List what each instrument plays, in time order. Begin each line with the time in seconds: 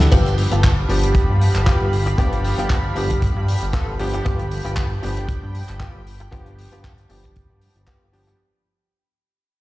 0.11 analog synth bass G1, electric grand piano F3 B3 D4 G4, clean electric guitar B3 F4 G4, analog synth pad G4 F5 B5, kick, closed hi-hat, crash
0.26 closed hi-hat
0.38 open hi-hat
0.51 analog synth bass G1, clean electric guitar B3 F4 A4, closed hi-hat
0.63 kick, clap, closed hi-hat
0.89 analog synth bass G1, electric grand piano F3 B3 D4 G4, muted clean electric guitar stroke, open hi-hat
1.03 muted clean electric guitar stroke, closed hi-hat
1.15 kick, closed hi-hat
1.29 analog synth bass G2
1.41 open hi-hat
1.55 analog synth bass G1, clap, closed hi-hat
1.66 clean electric guitar B3 F4 G4, kick, clap, closed hi-hat
1.81 analog synth bass G1
1.93 open hi-hat
2.06 muted clean electric guitar stroke, closed hi-hat
2.18 analog synth bass G1, electric grand piano F3 B3 D4 G4, clean electric guitar B3 F4 G4, kick, closed hi-hat
2.33 closed hi-hat
2.44 open hi-hat
2.58 analog synth bass G1, clean electric guitar B3 F4 G4, closed hi-hat
2.70 kick, clap, closed hi-hat
2.95 analog synth bass G1, electric grand piano F3 B3 D4 G4, muted clean electric guitar stroke, open hi-hat
3.10 muted clean electric guitar stroke, kick, closed hi-hat
3.22 kick, closed hi-hat
3.37 analog synth bass G2
3.48 open hi-hat
3.62 analog synth bass G1, closed hi-hat
3.73 clean electric guitar B3 F4 A4, kick, clap, closed hi-hat
3.88 analog synth bass G1
3.99 electric grand piano F3 B3 D4 G4, open hi-hat
4.13 muted clean electric guitar stroke, closed hi-hat
4.25 analog synth bass G1, clean electric guitar B3 F4 G4, analog synth pad G5, kick, closed hi-hat
4.39 closed hi-hat
4.51 open hi-hat
4.64 analog synth bass G1, clean electric guitar B3 F4 G4, closed hi-hat
4.76 kick, clap, closed hi-hat
5.02 analog synth bass G1, electric grand piano F3 B3 D4 G4, muted clean electric guitar stroke, open hi-hat
5.16 muted clean electric guitar stroke, closed hi-hat
5.29 kick, closed hi-hat
5.43 analog synth bass G2
5.55 open hi-hat
5.69 analog synth bass G1, clap, closed hi-hat
5.80 clean electric guitar B3 F4 G4, kick, clap, closed hi-hat
5.95 analog synth bass G1
6.07 open hi-hat
6.20 muted clean electric guitar stroke, closed hi-hat
6.31 analog synth bass G1, electric grand piano F3 B3 D4 G4, clean electric guitar B3 F4 G4, kick, closed hi-hat
6.46 closed hi-hat
6.58 open hi-hat
6.72 analog synth bass G1, clean electric guitar B3 F4 G4, closed hi-hat
6.84 kick, clap, closed hi-hat
6.98 closed hi-hat
7.09 analog synth bass G1, electric grand piano F3 B3 D4 G4, muted clean electric guitar stroke, open hi-hat
7.24 muted clean electric guitar stroke, kick, closed hi-hat
7.36 kick, closed hi-hat
7.50 analog synth bass G2
7.61 open hi-hat
7.76 analog synth bass G1, closed hi-hat
7.87 clean electric guitar B3 F4 G4, kick, clap, closed hi-hat
8.01 analog synth bass G1
8.13 electric grand piano F3 B3 D4 G4, open hi-hat
8.27 muted clean electric guitar stroke, closed hi-hat